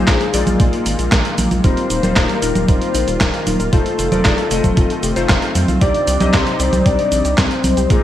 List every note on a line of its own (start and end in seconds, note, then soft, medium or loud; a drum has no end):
0.00 0.31 A#2 medium
0.00 5.78 D#3 medium
0.00 0.31 G#3 medium
0.00 1.62 G#3 medium
0.00 3.69 A#3 medium
0.00 0.31 D#4 medium
0.00 0.31 F4 medium
0.00 1.62 F4 loud
0.00 1.38 G#4 loud
0.00 0.31 C5 loud
0.08 0.18 A#1 loud
0.08 0.18 A#3 medium
0.08 kick loud
0.08 snare loud
0.08 clap medium
0.08 closed hi-hat medium
0.08 cabasa soft
0.21 closed hi-hat soft
0.34 0.44 A#1 loud
0.34 1.61 A#2 medium
0.34 1.61 G#3 medium
0.34 0.44 A#3 medium
0.34 1.61 D#4 medium
0.34 1.61 F4 medium
0.34 1.61 D5 loud
0.34 closed hi-hat loud
0.34 cabasa medium
0.47 0.57 A#1 medium
0.47 0.59 F4 medium
0.47 closed hi-hat soft
0.47 high conga medium
0.47 cabasa soft
0.60 0.70 A#1 loud
0.60 0.70 A#3 medium
0.60 kick loud
0.60 closed hi-hat medium
0.60 cabasa soft
0.73 closed hi-hat soft
0.86 0.96 G#1 loud
0.86 0.96 A#3 medium
0.86 closed hi-hat medium
0.86 cabasa medium
0.99 1.09 A#1 medium
0.99 1.11 F4 medium
0.99 closed hi-hat soft
0.99 cabasa soft
1.12 1.22 A#1 loud
1.12 1.23 A#3 medium
1.12 kick loud
1.12 snare loud
1.12 clap loud
1.12 closed hi-hat medium
1.12 cabasa soft
1.25 closed hi-hat soft
1.38 1.48 A#1 medium
1.38 1.49 A#3 medium
1.38 closed hi-hat medium
1.38 high conga medium
1.38 cabasa medium
1.51 1.61 A#1 medium
1.51 1.63 F4 medium
1.51 closed hi-hat soft
1.51 high conga medium
1.51 cabasa soft
1.64 1.74 D#1 loud
1.64 3.71 G3 medium
1.64 2.00 G3 medium
1.64 2.00 D#4 medium
1.64 1.75 D#4 medium
1.64 5.77 F4 medium
1.64 2.00 F4 medium
1.64 2.00 A#4 medium
1.64 2.18 C5 loud
1.64 kick loud
1.64 closed hi-hat medium
1.64 cabasa soft
1.77 closed hi-hat soft
1.90 2.00 D#1 loud
1.90 2.01 D#4 medium
1.90 closed hi-hat medium
1.90 cabasa medium
2.03 2.13 D#1 medium
2.03 2.39 G3 medium
2.03 2.39 D#4 medium
2.03 2.39 F4 medium
2.03 2.16 A#4 medium
2.03 2.39 C5 loud
2.03 closed hi-hat soft
2.03 high conga medium
2.03 cabasa soft
2.16 2.26 D#1 loud
2.16 2.27 D#4 medium
2.16 2.70 A#4 loud
2.16 kick loud
2.16 snare loud
2.16 clap medium
2.16 closed hi-hat medium
2.16 cabasa soft
2.29 closed hi-hat soft
2.42 2.52 D#1 loud
2.42 3.70 G3 medium
2.42 2.53 D#4 medium
2.42 3.70 D#4 medium
2.42 3.70 F4 medium
2.42 3.70 A#4 medium
2.42 closed hi-hat medium
2.42 cabasa medium
2.55 2.65 D#1 medium
2.55 2.68 A#4 medium
2.55 closed hi-hat soft
2.55 high conga medium
2.55 cabasa soft
2.68 2.78 D#1 loud
2.68 2.79 D#4 medium
2.68 3.20 C5 loud
2.68 kick loud
2.68 closed hi-hat medium
2.68 cabasa soft
2.82 closed hi-hat soft
2.94 3.04 A#1 medium
2.94 3.05 D#4 medium
2.94 closed hi-hat medium
2.94 cabasa medium
3.07 3.18 D#1 medium
3.07 3.20 A#4 medium
3.07 closed hi-hat soft
3.07 cabasa soft
3.21 3.31 D#1 loud
3.21 3.31 D#4 medium
3.21 3.69 A#4 loud
3.21 kick loud
3.21 snare loud
3.21 clap medium
3.21 closed hi-hat medium
3.21 cabasa soft
3.34 closed hi-hat soft
3.47 3.57 D#1 medium
3.47 3.57 D#4 medium
3.47 closed hi-hat medium
3.47 high conga medium
3.47 cabasa medium
3.60 3.70 D#1 medium
3.60 3.72 A#4 medium
3.60 closed hi-hat soft
3.60 cabasa soft
3.73 3.83 F1 loud
3.73 5.79 A3 medium
3.73 4.09 A3 medium
3.73 7.86 C4 medium
3.73 4.09 D#4 medium
3.73 4.09 F4 medium
3.73 3.83 F4 medium
3.73 5.51 A4 loud
3.73 4.09 C5 medium
3.73 kick loud
3.73 closed hi-hat medium
3.73 cabasa soft
3.86 closed hi-hat soft
3.99 4.09 F1 loud
3.99 4.09 F4 medium
3.99 closed hi-hat medium
3.99 cabasa medium
4.12 4.22 F1 medium
4.12 4.48 A3 medium
4.12 4.48 D#4 medium
4.12 4.48 F4 medium
4.12 4.24 C5 medium
4.12 4.48 D5 loud
4.12 closed hi-hat soft
4.12 high conga medium
4.12 cabasa soft
4.25 4.35 F1 loud
4.25 4.36 F4 medium
4.25 kick loud
4.25 snare loud
4.25 clap medium
4.25 closed hi-hat medium
4.25 cabasa soft
4.38 closed hi-hat soft
4.51 4.61 F1 medium
4.51 5.14 A3 medium
4.51 5.14 D#4 medium
4.51 5.14 F4 medium
4.51 4.62 F4 medium
4.51 5.14 D#5 loud
4.51 closed hi-hat medium
4.51 cabasa medium
4.64 4.74 F1 medium
4.64 4.76 C5 medium
4.64 kick medium
4.64 closed hi-hat soft
4.64 high conga medium
4.64 cabasa soft
4.77 4.87 F1 loud
4.77 4.88 F4 medium
4.77 kick loud
4.77 closed hi-hat medium
4.77 cabasa soft
4.90 closed hi-hat soft
5.03 5.13 F1 medium
5.03 5.14 G4 medium
5.03 closed hi-hat medium
5.03 cabasa medium
5.16 5.26 F1 medium
5.16 5.78 A3 loud
5.16 5.78 D#4 medium
5.16 5.78 F4 medium
5.16 5.78 C5 loud
5.16 5.23 C5 medium
5.16 closed hi-hat soft
5.16 cabasa soft
5.29 5.39 F1 loud
5.29 5.42 F5 loud
5.29 kick loud
5.29 snare loud
5.29 clap medium
5.29 closed hi-hat medium
5.29 cabasa soft
5.42 closed hi-hat soft
5.55 5.65 F2 medium
5.55 5.66 C4 medium
5.55 closed hi-hat medium
5.55 high conga medium
5.55 cabasa medium
5.68 5.78 C2 medium
5.68 5.81 F4 medium
5.68 closed hi-hat soft
5.68 high conga medium
5.68 cabasa soft
5.81 5.91 C2 loud
5.81 6.17 C3 medium
5.81 7.88 G3 medium
5.81 6.17 C4 medium
5.81 5.92 C4 medium
5.81 6.17 D#4 medium
5.81 7.88 D#4 loud
5.81 6.17 G4 medium
5.81 6.17 D5 medium
5.81 6.35 D5 loud
5.81 kick loud
5.81 closed hi-hat medium
5.81 cabasa soft
5.94 closed hi-hat soft
6.07 6.18 C2 loud
6.07 6.18 C4 medium
6.07 closed hi-hat medium
6.07 cabasa medium
6.20 6.31 C2 medium
6.20 6.57 C3 loud
6.20 6.57 C4 medium
6.20 6.57 D#4 medium
6.20 6.57 G4 medium
6.20 6.33 G4 medium
6.20 6.57 D#5 loud
6.20 closed hi-hat soft
6.20 high conga medium
6.20 cabasa soft
6.34 6.44 C2 loud
6.34 6.44 C4 medium
6.34 6.87 C5 loud
6.34 kick loud
6.34 snare loud
6.34 clap medium
6.34 closed hi-hat medium
6.34 cabasa soft
6.47 closed hi-hat soft
6.60 6.70 C2 loud
6.60 7.87 C3 medium
6.60 7.87 C4 medium
6.60 6.70 C4 medium
6.60 7.87 D#4 medium
6.60 7.87 G4 medium
6.60 7.87 D5 medium
6.60 closed hi-hat medium
6.60 cabasa medium
6.73 6.83 C2 medium
6.73 6.85 G4 medium
6.73 closed hi-hat soft
6.73 high conga medium
6.73 cabasa soft
6.86 6.96 C2 loud
6.86 6.96 C4 medium
6.86 7.39 D5 loud
6.86 kick loud
6.86 closed hi-hat medium
6.86 cabasa soft
6.99 closed hi-hat soft
7.12 7.22 A#1 loud
7.12 7.23 C4 medium
7.12 closed hi-hat medium
7.12 cabasa medium
7.25 7.35 C2 medium
7.25 7.37 G4 medium
7.25 closed hi-hat soft
7.25 cabasa soft
7.38 7.48 C2 loud
7.38 7.49 C4 medium
7.38 7.92 C5 loud
7.38 kick loud
7.38 snare loud
7.38 clap medium
7.38 closed hi-hat medium
7.38 cabasa soft
7.51 closed hi-hat soft
7.64 7.74 C2 medium
7.64 7.75 C4 medium
7.64 closed hi-hat medium
7.64 high conga medium
7.64 cabasa medium
7.77 7.87 C2 medium
7.77 7.90 G4 medium
7.77 closed hi-hat soft
7.77 cabasa soft
7.90 8.00 A#1 loud
7.90 8.03 A#2 medium
7.90 8.03 D#3 medium
7.90 8.03 G#3 medium
7.90 8.01 A#3 medium
7.90 8.03 A#3 medium
7.90 8.03 D#4 medium
7.90 8.03 F4 medium
7.90 8.03 G#4 loud
7.90 8.03 A#4 medium
7.90 kick loud
7.90 closed hi-hat medium
7.90 cabasa soft